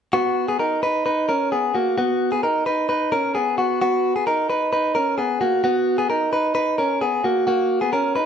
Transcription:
0.13 B3 F#4
0.48 B3 G#4
0.59 D#4 A#4
0.83 D#4 B4
1.06 D#4 B4
1.29 C#4 A#4
1.52 B3 G#4
1.75 A#3 F#4
1.98 B3 F#4
2.32 B3 G#4
2.43 D#4 A#4
2.66 D#4 B4
2.89 D#4 B4
3.12 C#4 A#4
3.35 B3 G#4
3.58 B3 F#4
3.82 B3 F#4
4.16 B3 G#4
4.27 D#4 A#4
4.50 D#4 B4
4.73 D#4 B4
4.95 C#4 A#4
5.18 B3 G#4
5.41 A#3 F#4
5.64 B3 F#4
5.98 B3 G#4
6.10 D#4 A#4
6.33 D#4 B4
6.55 D#4 B4
6.78 C#4 A#4
7.01 B3 G#4
7.24 A#3 F#4
7.47 A#3 F#4
7.81 B3 G#4
7.93 C#4 A#4
8.16 D#4 B4

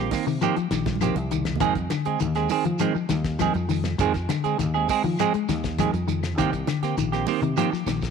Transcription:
Already playing: G4
0.00 A#3 C4
0.11 D#3 A#3 C4, muted clean electric guitar stroke, kick, snare, open hi-hat, high conga, shekere
0.26 C3 D#3, muted clean electric guitar stroke, shekere
0.41 D#3 F3 A#3 C4 G4, closed hi-hat, claves, shekere
0.56 F3, muted fingered electric bass stroke, muted clean electric guitar stroke, closed hi-hat, shekere
0.71 A#1 D#3, muted clean electric guitar stroke, snare, closed hi-hat, high conga, shekere
0.86 kick, snare, closed hi-hat, high conga, shekere
0.96 high conga
1.01 D#3 F3 A#3 C4 G4, kick, closed hi-hat, claves, shekere
1.06 low conga
1.16 C2, muted clean electric guitar stroke, closed hi-hat, low conga, shekere
1.31 D#3, muted clean electric guitar stroke, closed hi-hat, shekere
1.36 low conga
1.45 snare, closed hi-hat, low conga, claves, shekere
1.56 low conga
1.60 F2 D#3 G#3 C4 G#4, kick, closed hi-hat, low conga, shekere
1.75 muted clean electric guitar stroke, kick, closed hi-hat, high conga, shekere
1.90 D3, muted clean electric guitar stroke, snare, closed hi-hat, high conga, claves, shekere
2.05 G#3 C4 G#4, muted fingered electric bass stroke, closed hi-hat, shekere
2.20 D#2 D#3, muted clean electric guitar stroke, closed hi-hat, shekere
2.35 G#3 C4 G#4, snare, closed hi-hat, claves, shekere
2.49 D#3 C4 G#4, muted clean electric guitar stroke, open hi-hat, high conga, shekere
2.64 D#3 F3, muted clean electric guitar stroke, closed hi-hat, low conga, shekere
2.79 D#3 F3 G#3 C4, muted clean electric guitar stroke, closed hi-hat, claves, shekere
2.95 F3, muted fingered electric bass stroke, muted clean electric guitar stroke, shekere
3.09 D#2 D#3, muted clean electric guitar stroke, snare, closed hi-hat, high conga, shekere
3.24 kick, snare, closed hi-hat, shekere
3.39 D#3 F3 G#3 C4 G#4, kick, closed hi-hat, high conga, claves, shekere
3.54 F2, muted clean electric guitar stroke, closed hi-hat, high conga, shekere
3.69 D#3, muted clean electric guitar stroke, open hi-hat, high conga, low conga, shekere
3.84 snare, closed hi-hat, high conga, claves, shekere
3.98 F2 D#3 G#3 C4 G#4, muted clean electric guitar stroke, kick, closed hi-hat, low conga, shekere
4.14 muted clean electric guitar stroke, kick, snare, closed hi-hat, shekere
4.29 D3, muted clean electric guitar stroke, snare, closed hi-hat, high conga, claves, shekere
4.44 G#3 C4 G#4, muted fingered electric bass stroke, closed hi-hat, shekere
4.58 D#2 D#3, muted clean electric guitar stroke, snare, closed hi-hat, shekere
4.74 G#3 C4 G#4, claves, shekere
4.89 G#3 C4 G#4, muted clean electric guitar stroke, kick, open hi-hat, high conga, shekere
5.04 D#3 F3, low conga, shekere
5.19 F3 G#3 C4 G#4, muted clean electric guitar stroke, closed hi-hat, claves, shekere
5.34 G#3, muted fingered electric bass stroke, closed hi-hat, shekere
5.49 D#2 D#3, muted clean electric guitar stroke, snare, closed hi-hat, high conga, shekere
5.64 kick, snare, closed hi-hat, shekere
5.78 D#3 F3 G#3 C4 G#4, kick, snare, closed hi-hat, high conga, claves, shekere
5.93 F2, muted clean electric guitar stroke, closed hi-hat, high conga, shekere
6.08 D#3, muted clean electric guitar stroke, closed hi-hat, high conga, low conga, shekere
6.23 snare, closed hi-hat, claves, shekere
6.38 C2 D#3 A#3 C4 G4, kick, closed hi-hat, low conga, shekere
6.53 muted clean electric guitar stroke, kick, closed hi-hat, shekere
6.67 D3, muted clean electric guitar stroke, snare, closed hi-hat, high conga, claves, shekere
6.82 A#3 C4 G4, muted fingered electric bass stroke, snare, closed hi-hat, shekere
6.97 A#1 D#3, muted clean electric guitar stroke, closed hi-hat, shekere
7.12 A#3 C4 G4, snare, closed hi-hat, claves, shekere
7.27 D#3 A#3 C4 G4, open hi-hat, high conga, shekere
7.42 C3 D#3, muted clean electric guitar stroke, closed hi-hat, low conga, shekere
7.57 D#3 F3 A#3 C4 G4, closed hi-hat, claves, shekere
7.72 F3, muted clean electric guitar stroke, muted fingered electric bass stroke, snare, shekere
7.86 A#1 D#3, muted clean electric guitar stroke, snare, closed hi-hat, high conga, shekere
8.01 kick, snare, closed hi-hat, shekere

